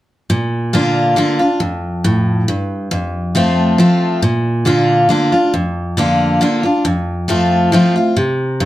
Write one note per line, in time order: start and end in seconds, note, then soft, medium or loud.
0.30 1.13 A#2 medium
0.73 1.15 D3 medium
0.73 1.15 A#3 medium
0.73 1.16 D4 loud
0.73 1.16 F4 medium
1.16 1.39 D3 medium
1.16 1.39 A#3 medium
1.16 1.40 D4 medium
1.16 1.38 F4 loud
1.39 1.61 D4 soft
1.39 1.59 F4 medium
1.60 2.44 F2 medium
2.04 2.46 A2 medium
2.48 2.90 G2 medium
2.91 3.75 F2 medium
3.35 3.77 F3 medium
3.35 3.77 A3 loud
3.35 3.77 C4 medium
3.35 3.78 F4 loud
3.78 4.20 F3 medium
3.78 4.21 A3 medium
3.78 4.21 C4 medium
3.78 4.21 F4 medium
4.22 5.06 A#2 medium
4.65 5.07 D3 medium
4.65 5.08 A#3 medium
4.65 5.08 D4 medium
4.65 5.08 F4 loud
5.09 5.32 D3 medium
5.09 5.32 A#3 medium
5.09 5.32 D4 medium
5.09 5.31 F4 medium
5.32 5.53 D4 soft
5.32 5.52 F4 medium
5.54 6.37 F2 medium
5.97 6.39 D3 medium
5.97 6.39 A#3 medium
5.97 6.39 D4 medium
5.97 6.40 F4 loud
6.41 6.63 D3 medium
6.41 6.63 A#3 medium
6.41 6.64 D4 loud
6.41 6.62 F4 medium
6.63 6.84 D4 soft
6.63 6.83 F4 medium
6.85 7.68 F2 medium
7.28 7.70 F3 medium
7.28 7.70 A3 loud
7.28 7.71 C4 medium
7.28 7.71 F4 medium
7.72 7.94 F3 medium
7.72 7.95 A3 medium
7.72 7.95 C4 loud
7.72 7.94 F4 medium
7.96 8.16 C4 soft
7.96 8.15 F4 medium
8.16 8.65 C3 medium
8.60 8.65 G2 medium